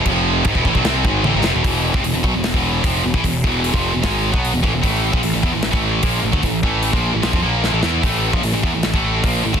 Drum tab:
CC |x---x---x-------|----------------|----------------|----------------|
HH |----------------|o---o---o---o---|o---o---o---o---|o---o---o---o---|
SD |--------o-----o-|--------o-------|--------o-------|--------o-------|
T1 |------------o---|----------------|----------------|----------------|
BD |o---oooo--o-----|o--o--o--o--o--o|o-o--o--o--o--o-|o--o--o--o--o--o|

CC |----------------|----------------|
HH |o---o---o-------|o---o---o---o---|
SD |--------o---o-o-|--------o-------|
T1 |----------------|----------------|
BD |o-o--o---o------|o--o--o--o--o--o|